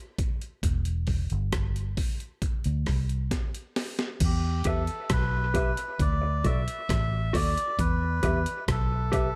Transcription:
0.18 kick loud
0.18 closed hi-hat medium
0.41 closed hi-hat soft
0.63 1.27 E1 loud
0.63 kick loud
0.63 closed hi-hat loud
0.85 closed hi-hat soft
1.07 kick medium
1.07 open hi-hat soft
1.30 1.94 G1 medium
1.30 closed hi-hat soft
1.52 kick loud
1.52 cross-stick loud
1.52 closed hi-hat medium
1.76 closed hi-hat soft
1.97 kick medium
1.97 open hi-hat medium
2.20 closed hi-hat soft
2.42 kick loud
2.42 closed hi-hat medium
2.64 2.86 D2 medium
2.64 closed hi-hat soft
2.86 3.29 C2 medium
2.86 kick medium
2.86 cross-stick medium
2.86 open hi-hat soft
3.09 closed hi-hat soft
3.31 kick medium
3.31 snare medium
3.31 closed hi-hat medium
3.55 closed hi-hat soft
3.76 snare medium
3.76 open hi-hat medium
3.99 snare medium
3.99 closed hi-hat soft
4.20 4.63 E2 loud
4.20 kick loud
4.20 closed hi-hat loud
4.20 crash loud
4.25 4.69 G4 medium
4.64 4.87 E2 medium
4.64 4.80 G4 medium
4.64 5.13 A4 loud
4.64 4.81 B4 medium
4.64 4.81 E5 loud
4.64 kick medium
4.64 closed hi-hat medium
4.87 closed hi-hat soft
5.10 5.74 B1 medium
5.10 6.03 B4 loud
5.10 kick loud
5.10 cross-stick loud
5.10 closed hi-hat medium
5.54 5.69 G4 medium
5.54 5.70 B4 medium
5.54 5.70 E5 loud
5.54 kick loud
5.54 closed hi-hat medium
5.77 muted clean electric guitar stroke soft
5.77 closed hi-hat medium
5.99 6.42 D2 medium
5.99 6.47 D5 loud
5.99 kick loud
5.99 closed hi-hat medium
6.22 muted clean electric guitar stroke soft
6.44 6.66 B1 medium
6.44 6.59 F#4 medium
6.44 6.60 A4 medium
6.44 6.60 D5 medium
6.44 7.37 E5 loud
6.44 kick medium
6.44 closed hi-hat medium
6.68 closed hi-hat medium
6.89 7.32 A1 medium
6.89 kick loud
6.89 cross-stick loud
6.89 closed hi-hat medium
7.33 7.55 D#2 medium
7.33 7.48 F#4 medium
7.33 7.49 A4 loud
7.33 7.49 D5 loud
7.33 7.81 D5 loud
7.33 kick loud
7.33 open hi-hat medium
7.58 closed hi-hat medium
7.79 8.21 E2 loud
7.79 8.64 B4 loud
7.79 kick loud
7.79 closed hi-hat loud
8.23 8.45 E2 loud
8.23 8.38 G4 medium
8.23 8.38 B4 medium
8.23 8.39 E5 medium
8.23 kick medium
8.23 closed hi-hat medium
8.46 closed hi-hat medium
8.68 9.31 B1 medium
8.68 9.36 A4 medium
8.68 kick loud
8.68 cross-stick loud
8.68 closed hi-hat medium
9.12 9.27 G4 loud
9.12 9.27 B4 medium
9.12 9.28 E5 medium
9.12 kick medium
9.12 closed hi-hat medium

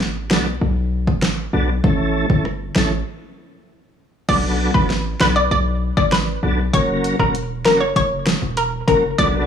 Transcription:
0.00 0.32 A1 medium
0.00 snare medium
0.30 0.58 B1 medium
0.30 0.47 F#3 medium
0.30 0.47 B3 medium
0.30 0.47 D4 medium
0.30 0.47 A4 medium
0.30 cross-stick medium
0.30 snare loud
0.61 1.09 B1 loud
1.07 1.48 A1 medium
1.07 kick loud
1.22 cross-stick medium
1.22 snare loud
1.53 1.80 B1 medium
1.53 1.70 F#3 medium
1.53 1.70 B3 medium
1.53 1.70 D4 medium
1.53 1.70 A4 medium
1.84 2.24 A1 loud
1.84 2.26 E3 loud
1.84 2.26 A3 medium
1.84 2.26 C#4 medium
1.84 2.26 A4 loud
1.84 kick loud
2.30 2.70 G1 medium
2.30 2.46 E3 medium
2.30 2.46 A3 medium
2.30 2.46 C#4 medium
2.30 2.47 A4 medium
2.30 kick medium
2.45 cross-stick medium
2.75 3.02 A1 loud
2.75 2.92 E3 medium
2.75 2.92 A3 medium
2.75 2.92 C#4 medium
2.75 2.92 A4 medium
2.75 cross-stick medium
2.75 snare loud
4.29 4.69 B1 medium
4.29 4.71 F#3 medium
4.29 4.71 B3 medium
4.29 4.71 D4 medium
4.29 4.71 A4 loud
4.29 4.42 D5 medium
4.29 kick loud
4.29 crash loud
4.74 5.15 A1 medium
4.74 4.91 F#3 medium
4.74 4.91 B3 medium
4.74 4.91 D4 medium
4.74 4.91 A4 medium
4.74 4.88 B4 medium
4.74 kick medium
4.90 snare medium
5.20 5.47 B1 medium
5.20 5.37 F#3 medium
5.20 5.37 B3 medium
5.20 5.37 D4 medium
5.20 5.37 A4 medium
5.20 5.34 B4 medium
5.20 cross-stick medium
5.20 snare loud
5.36 5.49 D5 medium
5.51 5.91 B1 loud
5.51 5.64 D5 medium
5.97 6.37 A1 medium
5.97 6.10 D5 medium
5.97 kick loud
6.12 6.56 B4 medium
6.12 cross-stick loud
6.12 snare loud
6.43 6.70 B1 medium
6.43 6.59 F#3 medium
6.43 6.59 B3 medium
6.43 6.60 D4 medium
6.43 6.60 A4 medium
6.73 7.14 F#1 loud
6.73 7.16 F#3 medium
6.73 7.16 A#3 medium
6.73 7.16 C#4 medium
6.73 7.16 A#4 loud
6.73 6.87 C#5 loud
6.73 kick loud
6.73 closed hi-hat medium
7.04 closed hi-hat medium
7.19 7.67 E1 medium
7.19 7.36 F#3 medium
7.19 7.36 A#3 medium
7.19 7.36 C#4 medium
7.19 7.33 A#4 medium
7.19 7.36 A#4 medium
7.19 kick medium
7.35 closed hi-hat medium
7.65 7.92 F#1 loud
7.65 7.82 F#3 medium
7.65 7.82 A#3 medium
7.65 7.82 C#4 medium
7.65 7.79 A#4 medium
7.65 7.82 A#4 medium
7.65 cross-stick medium
7.65 snare loud
7.65 closed hi-hat medium
7.80 7.94 C#5 medium
7.96 8.36 F#1 loud
7.96 8.39 C#5 loud
7.96 kick medium
7.96 closed hi-hat medium
8.26 cross-stick medium
8.26 snare loud
8.26 closed hi-hat soft
8.42 8.82 E1 medium
8.57 8.71 A#4 medium
8.57 closed hi-hat medium
8.88 9.15 F#1 loud
8.88 9.04 F#3 medium
8.88 9.04 A#3 medium
8.88 9.05 C#4 medium
8.88 9.01 A#4 medium
8.88 9.05 A#4 medium
8.88 kick medium
8.88 closed hi-hat medium
9.18 9.46 B1 loud
9.18 9.46 F#3 loud
9.18 9.46 B3 medium
9.18 9.46 D4 medium
9.18 9.46 A4 loud
9.18 9.32 D5 loud
9.18 kick loud
9.18 closed hi-hat medium

